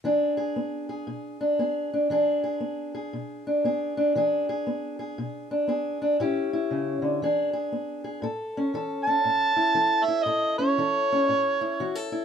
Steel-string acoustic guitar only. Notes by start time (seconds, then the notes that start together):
0.04 E3 D4 G#4
0.37 G#4
0.56 B3
0.89 G#4
1.07 B2
1.41 D4
1.59 B3 G#4
1.93 D4
2.10 E3 D4 G#4
2.44 G#4
2.60 B3
2.95 G#4
3.13 B2
3.47 D4
3.64 B3 G#4
3.97 D4
4.15 E3 D4 G#4
4.49 G#4
4.67 B3
4.99 G#4
5.18 B2
5.51 D4
5.68 B3 G#4
6.02 D4
6.20 A2 C#4 E4 G4
6.53 E4
6.71 C#3
7.02 D3
7.22 E3 D4 G#4
7.53 G#4
7.72 B3
8.04 G#4
8.22 A2 A4
8.57 C#4
8.74 E3 A4
9.07 C#4
9.25 A2
9.56 E4
9.75 E3 A4
10.08 E4
10.25 A2 A4
10.59 C#4
10.78 E3 A4
11.12 C#4
11.28 A2
11.61 E4
11.80 E3 F#4
11.95 A4
12.12 E4